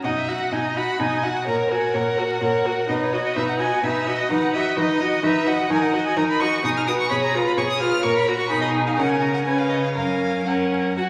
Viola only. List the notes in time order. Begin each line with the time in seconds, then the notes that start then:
0.06 D#4
0.28 F#4
0.52 D#4
0.76 F#4
1.00 D#4
1.24 F#4
1.48 A#4
1.71 F#4
1.95 A#4
2.19 F#4
2.43 A#4
2.66 F#4
2.89 D#4
3.12 F#4
3.36 D#4
3.60 F#4
3.84 D#4
4.08 F#4
4.31 D#4
4.55 F#4
4.78 D#4
5.01 F#4
5.24 D#4
5.47 F#4
5.71 D#4
5.93 F#4
6.17 D#4
6.41 F#4
6.64 D#4
6.88 F#4
7.11 G#4
7.34 F4
7.58 G#4
7.81 F4
8.04 A#4
8.28 F#4
8.51 D#4
8.99 C#4
9.47 C#4
9.98 C#4
10.47 C#4
10.97 F#4